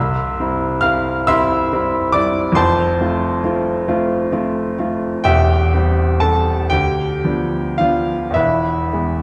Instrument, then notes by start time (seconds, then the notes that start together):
grand piano
Already playing: C2 E5 C6 E6
0.40 G3 C4 E4
0.81 G3 C4 E4 F5 F6
1.27 G3 C4 E4 E5 C6 E6
1.73 G3 C4 E4
2.12 G3 C4 E4 D5 D6
2.52 F2 C6
2.56 F1 C5 A5
3.01 A3 C4 F4
3.44 A3 C4 F4
3.88 A3 C4 F4
4.32 A3 C4 F4
4.79 A3 C4 F4
5.24 E1 E2 G4 E5 G5
5.74 G3 C4 G4
6.20 G3 C4 G4 A4 A5
6.70 D2 G4 G5
7.24 F3 B3 D4
7.78 F3 B3 D4 F4 F5
8.30 E2 E5
8.35 E1 E4 B4
8.93 E3 G#3 B3